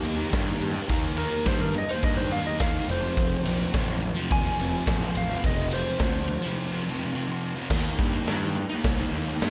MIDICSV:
0, 0, Header, 1, 6, 480
1, 0, Start_track
1, 0, Tempo, 566038
1, 767, Time_signature, 4, 2, 24, 8
1, 8056, End_track
2, 0, Start_track
2, 0, Title_t, "Electric slide guitar"
2, 0, Program_c, 0, 29
2, 0, Note_on_c, 0, 67, 107
2, 742, Note_off_c, 0, 67, 0
2, 998, Note_on_c, 0, 70, 120
2, 1234, Note_off_c, 0, 70, 0
2, 1251, Note_on_c, 0, 72, 106
2, 1365, Note_off_c, 0, 72, 0
2, 1367, Note_on_c, 0, 70, 96
2, 1483, Note_off_c, 0, 70, 0
2, 1510, Note_on_c, 0, 75, 108
2, 1614, Note_off_c, 0, 75, 0
2, 1617, Note_on_c, 0, 72, 106
2, 1728, Note_off_c, 0, 72, 0
2, 1731, Note_on_c, 0, 75, 103
2, 1841, Note_on_c, 0, 72, 99
2, 1845, Note_off_c, 0, 75, 0
2, 1960, Note_off_c, 0, 72, 0
2, 1969, Note_on_c, 0, 77, 101
2, 2083, Note_off_c, 0, 77, 0
2, 2093, Note_on_c, 0, 75, 104
2, 2206, Note_off_c, 0, 75, 0
2, 2206, Note_on_c, 0, 77, 104
2, 2438, Note_off_c, 0, 77, 0
2, 2470, Note_on_c, 0, 72, 114
2, 3390, Note_off_c, 0, 72, 0
2, 3664, Note_on_c, 0, 80, 118
2, 4354, Note_off_c, 0, 80, 0
2, 4387, Note_on_c, 0, 77, 107
2, 4610, Note_off_c, 0, 77, 0
2, 4632, Note_on_c, 0, 75, 111
2, 4853, Note_off_c, 0, 75, 0
2, 4865, Note_on_c, 0, 72, 127
2, 5788, Note_off_c, 0, 72, 0
2, 8056, End_track
3, 0, Start_track
3, 0, Title_t, "Distorted electric guitar"
3, 0, Program_c, 1, 30
3, 25, Note_on_c, 1, 51, 82
3, 44, Note_on_c, 1, 58, 88
3, 63, Note_on_c, 1, 63, 85
3, 131, Note_off_c, 1, 63, 0
3, 141, Note_on_c, 1, 63, 84
3, 178, Note_off_c, 1, 58, 0
3, 188, Note_on_c, 1, 58, 69
3, 244, Note_off_c, 1, 51, 0
3, 254, Note_on_c, 1, 51, 87
3, 264, Note_off_c, 1, 58, 0
3, 274, Note_on_c, 1, 58, 107
3, 279, Note_off_c, 1, 63, 0
3, 289, Note_on_c, 1, 63, 100
3, 369, Note_off_c, 1, 63, 0
3, 379, Note_on_c, 1, 63, 75
3, 400, Note_off_c, 1, 58, 0
3, 410, Note_on_c, 1, 58, 57
3, 606, Note_off_c, 1, 63, 0
3, 616, Note_on_c, 1, 63, 82
3, 630, Note_off_c, 1, 51, 0
3, 641, Note_off_c, 1, 58, 0
3, 652, Note_on_c, 1, 58, 75
3, 743, Note_on_c, 1, 51, 92
3, 756, Note_off_c, 1, 58, 0
3, 766, Note_on_c, 1, 58, 102
3, 770, Note_off_c, 1, 63, 0
3, 780, Note_on_c, 1, 63, 101
3, 980, Note_off_c, 1, 51, 0
3, 990, Note_on_c, 1, 51, 76
3, 1001, Note_off_c, 1, 58, 0
3, 1011, Note_on_c, 1, 58, 92
3, 1020, Note_off_c, 1, 63, 0
3, 1030, Note_on_c, 1, 63, 85
3, 1231, Note_off_c, 1, 51, 0
3, 1241, Note_on_c, 1, 51, 110
3, 1250, Note_off_c, 1, 58, 0
3, 1260, Note_on_c, 1, 58, 101
3, 1268, Note_off_c, 1, 63, 0
3, 1278, Note_on_c, 1, 63, 119
3, 1341, Note_off_c, 1, 63, 0
3, 1351, Note_on_c, 1, 63, 70
3, 1375, Note_off_c, 1, 58, 0
3, 1385, Note_on_c, 1, 58, 59
3, 1476, Note_off_c, 1, 51, 0
3, 1476, Note_off_c, 1, 63, 0
3, 1479, Note_off_c, 1, 58, 0
3, 1602, Note_on_c, 1, 63, 83
3, 1645, Note_on_c, 1, 58, 72
3, 1836, Note_off_c, 1, 63, 0
3, 1846, Note_on_c, 1, 63, 70
3, 1873, Note_off_c, 1, 58, 0
3, 1883, Note_on_c, 1, 58, 67
3, 1965, Note_on_c, 1, 51, 82
3, 1976, Note_off_c, 1, 58, 0
3, 1986, Note_on_c, 1, 58, 90
3, 1993, Note_off_c, 1, 63, 0
3, 2004, Note_on_c, 1, 63, 92
3, 2068, Note_off_c, 1, 63, 0
3, 2078, Note_on_c, 1, 63, 78
3, 2110, Note_off_c, 1, 58, 0
3, 2121, Note_on_c, 1, 58, 66
3, 2184, Note_off_c, 1, 51, 0
3, 2194, Note_on_c, 1, 51, 77
3, 2203, Note_off_c, 1, 58, 0
3, 2214, Note_on_c, 1, 58, 90
3, 2220, Note_off_c, 1, 63, 0
3, 2230, Note_on_c, 1, 63, 97
3, 2310, Note_off_c, 1, 63, 0
3, 2320, Note_on_c, 1, 63, 80
3, 2346, Note_off_c, 1, 58, 0
3, 2357, Note_on_c, 1, 58, 65
3, 2425, Note_off_c, 1, 51, 0
3, 2428, Note_off_c, 1, 63, 0
3, 2435, Note_on_c, 1, 41, 100
3, 2447, Note_off_c, 1, 58, 0
3, 2449, Note_on_c, 1, 48, 108
3, 2470, Note_on_c, 1, 53, 104
3, 2568, Note_off_c, 1, 53, 0
3, 2571, Note_on_c, 1, 53, 84
3, 2602, Note_off_c, 1, 48, 0
3, 2612, Note_on_c, 1, 48, 70
3, 2670, Note_off_c, 1, 41, 0
3, 2673, Note_on_c, 1, 41, 94
3, 2684, Note_off_c, 1, 48, 0
3, 2695, Note_on_c, 1, 48, 101
3, 2705, Note_off_c, 1, 53, 0
3, 2708, Note_on_c, 1, 53, 100
3, 2910, Note_off_c, 1, 41, 0
3, 2913, Note_on_c, 1, 41, 74
3, 2921, Note_off_c, 1, 48, 0
3, 2931, Note_on_c, 1, 48, 94
3, 2949, Note_off_c, 1, 53, 0
3, 2952, Note_on_c, 1, 53, 89
3, 3151, Note_off_c, 1, 41, 0
3, 3155, Note_on_c, 1, 41, 108
3, 3169, Note_off_c, 1, 48, 0
3, 3179, Note_on_c, 1, 48, 111
3, 3193, Note_off_c, 1, 53, 0
3, 3196, Note_on_c, 1, 53, 113
3, 3283, Note_off_c, 1, 53, 0
3, 3287, Note_on_c, 1, 53, 74
3, 3308, Note_off_c, 1, 48, 0
3, 3318, Note_on_c, 1, 48, 60
3, 3398, Note_off_c, 1, 53, 0
3, 3399, Note_off_c, 1, 48, 0
3, 3400, Note_off_c, 1, 41, 0
3, 3518, Note_on_c, 1, 53, 83
3, 3551, Note_on_c, 1, 48, 64
3, 3742, Note_off_c, 1, 53, 0
3, 3752, Note_on_c, 1, 53, 83
3, 3784, Note_off_c, 1, 48, 0
3, 3794, Note_on_c, 1, 48, 64
3, 3894, Note_on_c, 1, 41, 86
3, 3905, Note_off_c, 1, 48, 0
3, 3915, Note_on_c, 1, 48, 91
3, 3919, Note_off_c, 1, 53, 0
3, 3929, Note_on_c, 1, 53, 83
3, 3990, Note_off_c, 1, 53, 0
3, 4001, Note_on_c, 1, 53, 83
3, 4034, Note_off_c, 1, 48, 0
3, 4044, Note_on_c, 1, 48, 70
3, 4111, Note_off_c, 1, 41, 0
3, 4121, Note_on_c, 1, 41, 91
3, 4126, Note_off_c, 1, 48, 0
3, 4136, Note_on_c, 1, 48, 89
3, 4155, Note_off_c, 1, 53, 0
3, 4165, Note_on_c, 1, 53, 93
3, 4231, Note_off_c, 1, 53, 0
3, 4241, Note_on_c, 1, 53, 87
3, 4265, Note_off_c, 1, 48, 0
3, 4275, Note_on_c, 1, 48, 54
3, 4483, Note_off_c, 1, 53, 0
3, 4484, Note_off_c, 1, 41, 0
3, 4493, Note_on_c, 1, 53, 77
3, 4516, Note_off_c, 1, 48, 0
3, 4526, Note_on_c, 1, 48, 70
3, 4595, Note_off_c, 1, 53, 0
3, 4612, Note_off_c, 1, 48, 0
3, 4618, Note_on_c, 1, 41, 89
3, 4636, Note_on_c, 1, 48, 97
3, 4656, Note_on_c, 1, 53, 97
3, 4834, Note_off_c, 1, 41, 0
3, 4844, Note_on_c, 1, 41, 80
3, 4851, Note_off_c, 1, 48, 0
3, 4861, Note_on_c, 1, 48, 85
3, 4872, Note_off_c, 1, 53, 0
3, 4882, Note_on_c, 1, 53, 84
3, 5071, Note_off_c, 1, 41, 0
3, 5081, Note_on_c, 1, 41, 99
3, 5092, Note_off_c, 1, 48, 0
3, 5103, Note_on_c, 1, 48, 105
3, 5112, Note_off_c, 1, 53, 0
3, 5122, Note_on_c, 1, 53, 114
3, 5204, Note_off_c, 1, 53, 0
3, 5214, Note_on_c, 1, 53, 79
3, 5248, Note_off_c, 1, 48, 0
3, 5258, Note_on_c, 1, 48, 60
3, 5326, Note_off_c, 1, 41, 0
3, 5326, Note_off_c, 1, 53, 0
3, 5331, Note_off_c, 1, 48, 0
3, 5439, Note_on_c, 1, 53, 81
3, 5476, Note_on_c, 1, 48, 71
3, 5681, Note_off_c, 1, 53, 0
3, 5692, Note_on_c, 1, 53, 74
3, 5714, Note_off_c, 1, 48, 0
3, 5724, Note_on_c, 1, 48, 59
3, 5813, Note_on_c, 1, 41, 73
3, 5831, Note_off_c, 1, 48, 0
3, 5838, Note_off_c, 1, 53, 0
3, 5841, Note_on_c, 1, 48, 85
3, 5849, Note_on_c, 1, 53, 94
3, 5917, Note_off_c, 1, 53, 0
3, 5927, Note_on_c, 1, 53, 81
3, 5960, Note_off_c, 1, 48, 0
3, 5970, Note_on_c, 1, 48, 66
3, 6032, Note_off_c, 1, 41, 0
3, 6042, Note_on_c, 1, 41, 87
3, 6058, Note_off_c, 1, 48, 0
3, 6068, Note_on_c, 1, 48, 98
3, 6073, Note_off_c, 1, 53, 0
3, 6083, Note_on_c, 1, 53, 106
3, 6159, Note_off_c, 1, 53, 0
3, 6169, Note_on_c, 1, 53, 77
3, 6195, Note_off_c, 1, 48, 0
3, 6205, Note_on_c, 1, 48, 61
3, 6395, Note_off_c, 1, 53, 0
3, 6405, Note_off_c, 1, 41, 0
3, 6405, Note_on_c, 1, 53, 76
3, 6427, Note_off_c, 1, 48, 0
3, 6437, Note_on_c, 1, 48, 73
3, 6512, Note_off_c, 1, 53, 0
3, 6528, Note_off_c, 1, 48, 0
3, 6540, Note_on_c, 1, 51, 92
3, 6560, Note_on_c, 1, 58, 103
3, 6574, Note_on_c, 1, 63, 113
3, 6779, Note_off_c, 1, 51, 0
3, 6782, Note_on_c, 1, 51, 85
3, 6800, Note_off_c, 1, 58, 0
3, 6803, Note_on_c, 1, 58, 79
3, 6820, Note_off_c, 1, 63, 0
3, 6823, Note_on_c, 1, 63, 96
3, 7004, Note_off_c, 1, 51, 0
3, 7008, Note_on_c, 1, 51, 109
3, 7027, Note_off_c, 1, 58, 0
3, 7030, Note_on_c, 1, 58, 101
3, 7043, Note_off_c, 1, 63, 0
3, 7047, Note_on_c, 1, 63, 113
3, 7117, Note_off_c, 1, 63, 0
3, 7127, Note_on_c, 1, 63, 73
3, 7153, Note_off_c, 1, 58, 0
3, 7163, Note_on_c, 1, 58, 60
3, 7254, Note_off_c, 1, 51, 0
3, 7255, Note_off_c, 1, 58, 0
3, 7260, Note_off_c, 1, 63, 0
3, 7373, Note_on_c, 1, 63, 75
3, 7417, Note_on_c, 1, 58, 63
3, 7608, Note_off_c, 1, 63, 0
3, 7618, Note_on_c, 1, 63, 80
3, 7639, Note_off_c, 1, 58, 0
3, 7649, Note_on_c, 1, 58, 71
3, 7742, Note_on_c, 1, 51, 93
3, 7752, Note_off_c, 1, 58, 0
3, 7762, Note_on_c, 1, 58, 98
3, 7771, Note_off_c, 1, 63, 0
3, 7781, Note_on_c, 1, 63, 100
3, 7865, Note_off_c, 1, 63, 0
3, 7876, Note_on_c, 1, 63, 74
3, 7904, Note_off_c, 1, 58, 0
3, 7914, Note_on_c, 1, 58, 68
3, 7971, Note_off_c, 1, 51, 0
3, 7981, Note_on_c, 1, 51, 91
3, 7992, Note_off_c, 1, 58, 0
3, 8002, Note_on_c, 1, 58, 90
3, 8009, Note_off_c, 1, 63, 0
3, 8019, Note_on_c, 1, 63, 115
3, 8056, Note_off_c, 1, 51, 0
3, 8056, Note_off_c, 1, 58, 0
3, 8056, Note_off_c, 1, 63, 0
3, 8056, End_track
4, 0, Start_track
4, 0, Title_t, "Picked electric bass"
4, 0, Program_c, 2, 34
4, 30, Note_on_c, 2, 39, 89
4, 192, Note_off_c, 2, 39, 0
4, 280, Note_on_c, 2, 43, 105
4, 439, Note_off_c, 2, 43, 0
4, 513, Note_on_c, 2, 43, 81
4, 674, Note_off_c, 2, 43, 0
4, 754, Note_on_c, 2, 39, 94
4, 1071, Note_off_c, 2, 39, 0
4, 1235, Note_on_c, 2, 43, 97
4, 1552, Note_off_c, 2, 43, 0
4, 1724, Note_on_c, 2, 43, 101
4, 2038, Note_off_c, 2, 43, 0
4, 2209, Note_on_c, 2, 39, 98
4, 2364, Note_off_c, 2, 39, 0
4, 2443, Note_on_c, 2, 29, 88
4, 2601, Note_off_c, 2, 29, 0
4, 2687, Note_on_c, 2, 29, 95
4, 2843, Note_off_c, 2, 29, 0
4, 2924, Note_on_c, 2, 34, 100
4, 3081, Note_off_c, 2, 34, 0
4, 3170, Note_on_c, 2, 33, 96
4, 3482, Note_off_c, 2, 33, 0
4, 3656, Note_on_c, 2, 39, 99
4, 3809, Note_off_c, 2, 39, 0
4, 3895, Note_on_c, 2, 29, 82
4, 4049, Note_off_c, 2, 29, 0
4, 4131, Note_on_c, 2, 33, 94
4, 4286, Note_off_c, 2, 33, 0
4, 4372, Note_on_c, 2, 33, 92
4, 4527, Note_off_c, 2, 33, 0
4, 4613, Note_on_c, 2, 29, 105
4, 4925, Note_off_c, 2, 29, 0
4, 5083, Note_on_c, 2, 38, 98
4, 5398, Note_off_c, 2, 38, 0
4, 6530, Note_on_c, 2, 39, 106
4, 6686, Note_off_c, 2, 39, 0
4, 6774, Note_on_c, 2, 43, 107
4, 6929, Note_off_c, 2, 43, 0
4, 7012, Note_on_c, 2, 43, 95
4, 7325, Note_off_c, 2, 43, 0
4, 7499, Note_on_c, 2, 36, 102
4, 7653, Note_off_c, 2, 36, 0
4, 7732, Note_on_c, 2, 39, 84
4, 7888, Note_off_c, 2, 39, 0
4, 7988, Note_on_c, 2, 43, 94
4, 8056, Note_off_c, 2, 43, 0
4, 8056, End_track
5, 0, Start_track
5, 0, Title_t, "Muted distorted electric guitar strokes"
5, 1486, Note_on_c, 9, 29, 49
5, 1571, Note_off_c, 9, 29, 0
5, 3401, Note_on_c, 9, 29, 56
5, 3486, Note_off_c, 9, 29, 0
5, 5336, Note_on_c, 9, 29, 50
5, 5421, Note_off_c, 9, 29, 0
5, 7265, Note_on_c, 9, 29, 51
5, 7349, Note_off_c, 9, 29, 0
5, 8056, End_track
6, 0, Start_track
6, 0, Title_t, "Drums"
6, 40, Note_on_c, 9, 51, 82
6, 125, Note_off_c, 9, 51, 0
6, 277, Note_on_c, 9, 51, 111
6, 281, Note_on_c, 9, 36, 118
6, 282, Note_on_c, 9, 38, 121
6, 362, Note_off_c, 9, 51, 0
6, 366, Note_off_c, 9, 36, 0
6, 367, Note_off_c, 9, 38, 0
6, 522, Note_on_c, 9, 51, 77
6, 607, Note_off_c, 9, 51, 0
6, 756, Note_on_c, 9, 51, 120
6, 760, Note_on_c, 9, 36, 109
6, 841, Note_off_c, 9, 51, 0
6, 844, Note_off_c, 9, 36, 0
6, 992, Note_on_c, 9, 51, 86
6, 1076, Note_off_c, 9, 51, 0
6, 1235, Note_on_c, 9, 51, 117
6, 1240, Note_on_c, 9, 36, 118
6, 1241, Note_on_c, 9, 38, 116
6, 1320, Note_off_c, 9, 51, 0
6, 1324, Note_off_c, 9, 36, 0
6, 1325, Note_off_c, 9, 38, 0
6, 1478, Note_on_c, 9, 51, 74
6, 1563, Note_off_c, 9, 51, 0
6, 1719, Note_on_c, 9, 51, 114
6, 1722, Note_on_c, 9, 36, 115
6, 1804, Note_off_c, 9, 51, 0
6, 1806, Note_off_c, 9, 36, 0
6, 1960, Note_on_c, 9, 51, 92
6, 2045, Note_off_c, 9, 51, 0
6, 2203, Note_on_c, 9, 51, 124
6, 2206, Note_on_c, 9, 36, 125
6, 2208, Note_on_c, 9, 38, 125
6, 2288, Note_off_c, 9, 51, 0
6, 2291, Note_off_c, 9, 36, 0
6, 2293, Note_off_c, 9, 38, 0
6, 2449, Note_on_c, 9, 51, 72
6, 2534, Note_off_c, 9, 51, 0
6, 2689, Note_on_c, 9, 51, 103
6, 2690, Note_on_c, 9, 36, 126
6, 2774, Note_off_c, 9, 51, 0
6, 2775, Note_off_c, 9, 36, 0
6, 2929, Note_on_c, 9, 51, 89
6, 3014, Note_off_c, 9, 51, 0
6, 3170, Note_on_c, 9, 51, 102
6, 3172, Note_on_c, 9, 36, 121
6, 3175, Note_on_c, 9, 38, 112
6, 3255, Note_off_c, 9, 51, 0
6, 3256, Note_off_c, 9, 36, 0
6, 3260, Note_off_c, 9, 38, 0
6, 3412, Note_on_c, 9, 51, 62
6, 3496, Note_off_c, 9, 51, 0
6, 3651, Note_on_c, 9, 51, 102
6, 3654, Note_on_c, 9, 36, 121
6, 3736, Note_off_c, 9, 51, 0
6, 3738, Note_off_c, 9, 36, 0
6, 3896, Note_on_c, 9, 51, 76
6, 3981, Note_off_c, 9, 51, 0
6, 4131, Note_on_c, 9, 51, 105
6, 4132, Note_on_c, 9, 36, 120
6, 4136, Note_on_c, 9, 38, 125
6, 4216, Note_off_c, 9, 51, 0
6, 4217, Note_off_c, 9, 36, 0
6, 4221, Note_off_c, 9, 38, 0
6, 4368, Note_on_c, 9, 51, 75
6, 4453, Note_off_c, 9, 51, 0
6, 4611, Note_on_c, 9, 51, 110
6, 4612, Note_on_c, 9, 36, 106
6, 4696, Note_off_c, 9, 51, 0
6, 4697, Note_off_c, 9, 36, 0
6, 4845, Note_on_c, 9, 51, 90
6, 4930, Note_off_c, 9, 51, 0
6, 5082, Note_on_c, 9, 51, 117
6, 5088, Note_on_c, 9, 36, 124
6, 5088, Note_on_c, 9, 38, 127
6, 5167, Note_off_c, 9, 51, 0
6, 5172, Note_off_c, 9, 38, 0
6, 5173, Note_off_c, 9, 36, 0
6, 5322, Note_on_c, 9, 51, 77
6, 5407, Note_off_c, 9, 51, 0
6, 6531, Note_on_c, 9, 49, 118
6, 6531, Note_on_c, 9, 57, 68
6, 6533, Note_on_c, 9, 36, 109
6, 6536, Note_on_c, 9, 38, 120
6, 6616, Note_off_c, 9, 49, 0
6, 6616, Note_off_c, 9, 57, 0
6, 6618, Note_off_c, 9, 36, 0
6, 6621, Note_off_c, 9, 38, 0
6, 6774, Note_on_c, 9, 36, 104
6, 6858, Note_off_c, 9, 36, 0
6, 7015, Note_on_c, 9, 57, 63
6, 7021, Note_on_c, 9, 38, 121
6, 7100, Note_off_c, 9, 57, 0
6, 7105, Note_off_c, 9, 38, 0
6, 7497, Note_on_c, 9, 57, 59
6, 7500, Note_on_c, 9, 36, 114
6, 7502, Note_on_c, 9, 38, 111
6, 7582, Note_off_c, 9, 57, 0
6, 7584, Note_off_c, 9, 36, 0
6, 7587, Note_off_c, 9, 38, 0
6, 7984, Note_on_c, 9, 57, 66
6, 7989, Note_on_c, 9, 38, 127
6, 8056, Note_off_c, 9, 38, 0
6, 8056, Note_off_c, 9, 57, 0
6, 8056, End_track
0, 0, End_of_file